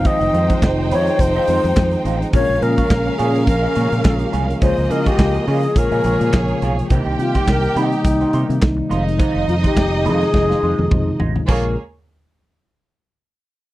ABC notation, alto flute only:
X:1
M:4/4
L:1/16
Q:"Swing 16ths" 1/4=105
K:Bbdor
V:1 name="Alto flute"
e4 z2 d2 c6 z2 | d2 B4 A2 B6 z2 | c2 B G3 A2 B6 z2 | z2 F G B2 E6 z4 |
z2 F G3 A8 z2 | B2 z12 z2 |]